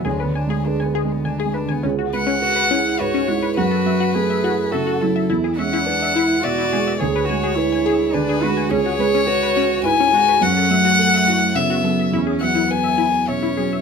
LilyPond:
<<
  \new Staff \with { instrumentName = "Violin" } { \time 3/4 \key fis \minor \tempo 4 = 105 gis16 b16 d'16 gis'16 d'16 b16 gis16 b16 d'16 gis'16 d'16 b16 | r8 fis''4. cis''4 | b'2 a'4 | r8 fis''4. d''4 |
cis''2 b'4 | cis''2 gis''4 | fis''2 e''4 | r8 fis''8 gis''4 cis''4 | }
  \new Staff \with { instrumentName = "Synth pluck" } { \time 3/4 \key fis \minor gis'16 b'16 gis''16 gis'16 r16 gis''16 gis'16 r16 gis''16 gis'16 b'16 gis''16 | cis'16 fis'16 b'16 cis'16 r16 b'16 cis'16 r16 b'16 cis'16 fis'16 b'16 | fis'16 a'16 e''16 fis'16 r16 e''16 fis'16 r16 e''16 fis'16 a'16 e''16 | e'16 gis'16 e''16 e'16 r16 e''16 e'16 r16 e''16 e'16 gis'16 e''16 |
gis'16 b'16 gis''16 gis'16 r16 gis''16 gis'16 r16 gis''16 gis'16 b'16 gis''16 | cis'16 fis'16 b'16 cis'16 r16 b'16 cis'16 r16 b'16 cis'16 fis'16 b'16 | fis'16 a'16 e''16 fis'16 r16 e''16 fis'16 r16 e''16 fis'16 a'16 e''16 | e'16 gis'16 e''16 e'16 r16 e''16 e'16 r16 e''16 e'16 gis'16 e''16 | }
  \new Staff \with { instrumentName = "Cello" } { \time 3/4 \key fis \minor d2~ d8 r8 | r4 fis'8 e'8 fis'8 e'8 | fis'4 gis'4 fis'8 e'8 | e'8 cis'8 d'8 e'8 fis'4 |
gis'8 fis'8 e'4 d'8 fis'8 | gis'4 fis'4 e'8 fis'8 | cis'8 a4. b4 | cis'8 b4. cis'4 | }
  \new Staff \with { instrumentName = "Felt piano" } { \time 3/4 \key fis \minor cis''4 b'4 r4 | r2. | r2. | r2. |
r2. | r2. | r2. | r2. | }
  \new Staff \with { instrumentName = "Felt piano" } { \clef bass \time 3/4 \key fis \minor \tuplet 3/2 { d,8 d8 gis8 gis'8 b'8 gis8 d8 gis8 d8 } | cis,8 gis8 b'8 gis'8 gis,8 gis8 | fis,8 fis8 a8 e'8 cis8 fis8 | e,8 gis8 b'8 e'8 b,8 gis8 |
d,8 gis8 b'8 gis'8 d8 gis8 | cis,8 gis8 b'8 fis'8 gis,8 gis8 | fis,8 fis8 a'8 e'8 cis8 fis8 | e,8 fis8 b'8 e'8 b,8 fis8 | }
>>